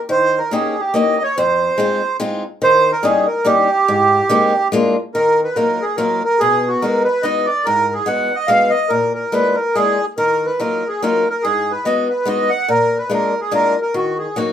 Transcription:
0.09 steel-string acoustic guitar D#3, accordion C5
0.38 accordion A#4
0.51 steel-string acoustic guitar A#3 C#4 D#4 G4, accordion G#4
0.80 accordion G4
0.94 steel-string acoustic guitar A#3 C#4 D#4 G4, accordion D#5
1.23 accordion C#5
1.37 steel-string acoustic guitar F2, accordion C5
1.78 steel-string acoustic guitar G#3 C4 D#4 F4
2.20 steel-string acoustic guitar G#3 C4 D#4 F4
2.62 steel-string acoustic guitar D#3, accordion C5
2.92 accordion A#4
3.03 steel-string acoustic guitar G3 A#3 C#4 D#4, accordion G#4
3.27 accordion A#4
3.45 steel-string acoustic guitar G3 A#3 C#4 D#4, accordion G4
3.88 steel-string acoustic guitar G#2
4.29 steel-string acoustic guitar G#3 A#3 C4 D#4
4.72 steel-string acoustic guitar G#3 A#3 D4 F4
5.14 steel-string acoustic guitar D#3, accordion A#4
5.44 accordion B4
5.55 steel-string acoustic guitar F#3 A#3 D#4 F4, accordion A#4
5.82 accordion G#4
5.96 steel-string acoustic guitar F#3 A#3 D#4 F4, accordion A#4
6.24 accordion A#4
6.39 steel-string acoustic guitar B2, accordion G#4
6.68 accordion F#4
6.81 steel-string acoustic guitar G#3 B3 D#4 F#4, accordion A#4
7.05 accordion B4
7.23 steel-string acoustic guitar G#3 B3 D#4 F#4, accordion D#5
7.46 accordion D5
7.65 steel-string acoustic guitar G#2, accordion A#4
7.94 accordion G#4
8.06 steel-string acoustic guitar G#3 B3 D#4 F#4, accordion F#5
8.35 accordion D#5
8.48 steel-string acoustic guitar G#3 B3 D#4 F#4, accordion F5
8.70 accordion D#5
8.89 steel-string acoustic guitar A#2, accordion A#4
9.14 accordion A#4
9.32 steel-string acoustic guitar G#3 A#3 D4 F4, accordion B4
9.55 accordion A#4
9.75 steel-string acoustic guitar G#3 A#3 D4 F4, accordion G#4
10.18 steel-string acoustic guitar D#3, accordion A#4
10.46 accordion B4
10.59 steel-string acoustic guitar F#3 A#3 D#4 F4, accordion A#4
10.88 accordion G#4
11.03 steel-string acoustic guitar F#3 A#3 D#4 F4, accordion A#4
11.30 accordion A#4
11.43 steel-string acoustic guitar G#2, accordion G#4
11.71 accordion B4
11.85 steel-string acoustic guitar G#3 B3 D#4 F#4, accordion D#5
12.10 accordion B4
12.25 steel-string acoustic guitar G#3 B3 D#4 F#4, accordion D#5
12.50 accordion F#5
12.68 steel-string acoustic guitar A#2, accordion A#4
12.98 accordion B4
13.10 steel-string acoustic guitar G#3 A#3 D4 F4
13.14 accordion A#4
13.41 accordion G#4
13.51 steel-string acoustic guitar G#3 A#3 D4 F4, accordion A#4
13.82 accordion A#4
13.94 steel-string acoustic guitar D#3, accordion F#4
14.19 accordion G#4
14.36 steel-string acoustic guitar F#3 A#3 D#4 F#4, accordion F#4

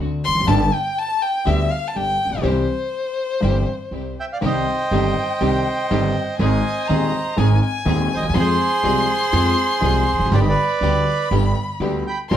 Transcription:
0.00 upright bass D2, grand piano D2 D3, string section C4 D4 F#4
0.24 upright bass E1, violin C6
0.30 grand piano E2
0.35 upright bass F1, grand piano F2
0.40 upright bass F#1, grand piano F#2
0.46 grand piano G1 G2 D3 G3 B3 G4, upright bass G1, string section B3 D4 G4, violin A5
0.74 violin G5
0.98 violin A5
1.22 violin G5
1.45 grand piano D2 D3 G3 B3 G4, upright bass D2, string section B3 D4 G4, violin E5
1.71 violin F5
1.88 violin A5
1.94 grand piano G1 G2, upright bass G1, string section B3 D4 G4, violin G5
2.25 grand piano A1, upright bass A1
2.31 grand piano A#1, upright bass A#1
2.36 grand piano B1, upright bass B1
2.42 grand piano C2 C3 E3 G3 C4 G4, upright bass C2, string section C4 E4 G4, violin C5
3.40 grand piano G1 G2 E3 G3 C4 G4, upright bass G1, string section C4 E4 G4
3.91 upright bass C2, grand piano C2 C3, string section C4 E4 G4
4.20 bandoneon E5 G5
4.33 bandoneon D5 F5
4.41 grand piano C2 C3 D#3 G3 C4 G4, upright bass C2, string section C4 D#4 G4, violin G5
4.46 bandoneon C5 D#5
4.91 upright bass G1, grand piano G1 G2 D#3 G3 C4 G4, string section C4 D#4 G4
5.41 grand piano C2 C3 D#3 G3 C4 G4, upright bass C2, string section C4 D#4 G4
5.90 upright bass G1, grand piano G1 G2 D#3 G3 C4 G4, string section C4 D#4 G4
6.38 upright bass G#1, grand piano G#1 G#2 D#3 G#3 C4 G#4, string section C4 D#4 G#4, violin G#5
6.43 bandoneon C5 D#5
6.88 grand piano D#1 D#2 D#3 G#3 C4 G#4, upright bass D#2, string section C4 D#4 G#4, violin A#5
7.36 grand piano G#1 G#2 D#3 G#3 C4 G#4, upright bass G#1, string section C4 D#4 G#4, violin G#5
7.62 violin G#5
7.85 grand piano D#1 D#2 D#3 G#3 C4 G#4, upright bass D#2, string section C4 D#4 G#4
8.14 grand piano D2, upright bass D2, bandoneon C5 D#5
8.23 grand piano D#2, upright bass D#2
8.28 grand piano E2, upright bass E2
8.33 grand piano F2 F3 G#3 C4 G#4, upright bass F2, string section C4 F4 G#4, violin C6
8.40 bandoneon G#4 C5
8.83 upright bass C2, grand piano C2 C3 F3 G#3 C4 G#4, string section C4 F4 G#4
9.33 grand piano F2 F3 G#3 C4 G#4, upright bass F2, string section C4 F4 G#4
9.80 grand piano C2 C3 F3 G#3 C4 G#4, upright bass C2, string section C4 F4 G#4
10.13 upright bass E1, grand piano E2
10.19 upright bass F1, grand piano F2
10.26 upright bass F#1, grand piano F#2
10.31 grand piano G1 G2 D3 G3 B3 G4, upright bass G1, string section B3 D4 G4, bandoneon B4 D5, violin B5
10.42 bandoneon D#5
10.49 bandoneon B4 D5
10.81 upright bass D2, grand piano D2 D3 G3 B3 G4, string section B3 D4 G4, violin B5
11.31 upright bass G1, grand piano G1 G2 D3 G3 B3 G4, string section B3 D4 G4
11.80 upright bass D2, grand piano D2 D3 G3 B3 G4, string section B3 D4 G4
12.07 bandoneon G5 B5
12.29 upright bass A#1, grand piano A#1 A#2 C3 F3 A#3 F4, string section C4 F4 A#4, violin C6
12.33 bandoneon C5

